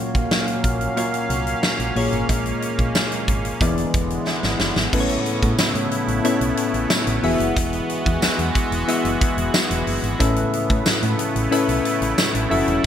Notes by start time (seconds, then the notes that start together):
Already playing: A#2 F#3 A#3 C#4 F4 F#4 C#5 F5
0.15 A#1, kick, closed hi-hat
0.31 snare, cowbell
0.48 closed hi-hat
0.64 A#1, kick, closed hi-hat
0.81 closed hi-hat
0.96 A#3 F4 F#4 C#5, closed hi-hat, cowbell
1.14 closed hi-hat
1.30 C2, closed hi-hat
1.47 closed hi-hat
1.63 snare, cowbell
1.79 A#1, closed hi-hat
1.96 A#1 A#2 G#3 A#3 F4 G#4 C#5, open hi-hat
2.12 G#1, closed hi-hat
2.29 A#1, kick, closed hi-hat, cowbell
2.46 closed hi-hat
2.62 closed hi-hat
2.79 A#1, kick, closed hi-hat
2.95 snare, tambourine, cowbell
3.12 closed hi-hat
3.28 G#1, kick, closed hi-hat
3.45 closed hi-hat
3.61 E1 D3 E3 G#3 B3 E4 G#4 D5, kick, closed hi-hat, cowbell
3.78 closed hi-hat
3.94 E1, kick, closed hi-hat
4.10 closed hi-hat
4.27 snare, cowbell
4.43 G#1, snare
4.60 F#1, snare
4.76 G#1, snare
4.93 A1 A2 C#3 A3 B3 C#4 E4 A4 B4, kick, crash, cowbell
5.00 C#5
5.09 closed hi-hat
5.26 closed hi-hat
5.42 A2, kick, closed hi-hat
5.58 snare, tambourine, cowbell
5.75 A2, closed hi-hat
5.91 closed hi-hat
6.08 A1, closed hi-hat
6.24 B3 C#4 E4 A4 C#5, closed hi-hat, cowbell
6.41 B1, closed hi-hat
6.57 closed hi-hat
6.74 A1, closed hi-hat
6.90 snare, tambourine, cowbell
7.07 A1, closed hi-hat
7.23 E1 E3 G#3 B3 E4 F#4 G#4 E5, open hi-hat
7.40 F#1, closed hi-hat
7.56 E1, kick, closed hi-hat, cowbell
7.73 closed hi-hat
7.90 closed hi-hat
8.06 E2, kick, closed hi-hat
8.22 E2, snare, tambourine, cowbell
8.39 E2, closed hi-hat
8.55 kick, closed hi-hat
8.72 E1, closed hi-hat
8.88 B3 E4 F#4 G#4 E5, closed hi-hat, cowbell
9.05 F#1, closed hi-hat
9.21 kick, closed hi-hat
9.38 E1, closed hi-hat
9.54 snare, tambourine, cowbell
9.71 E1, closed hi-hat
9.87 F#1, open hi-hat
10.03 G#1, closed hi-hat
10.19 A1 A2 C#3 A3 B3 C#4 E4 A4 B4 E5, kick, closed hi-hat, cowbell
10.36 closed hi-hat
10.53 closed hi-hat
10.70 A2, kick, closed hi-hat
10.86 A2, snare, tambourine, cowbell
11.02 A2, closed hi-hat
11.19 closed hi-hat
11.36 A1, closed hi-hat
11.51 C#4 E4 A4 B4 E5, closed hi-hat, cowbell
11.69 B1, closed hi-hat
11.85 closed hi-hat
12.02 A1, closed hi-hat
12.18 snare, tambourine, cowbell
12.35 A1, closed hi-hat
12.50 F#1 F#3 C#4 E4 F#4 A4 E5, open hi-hat
12.67 E1, closed hi-hat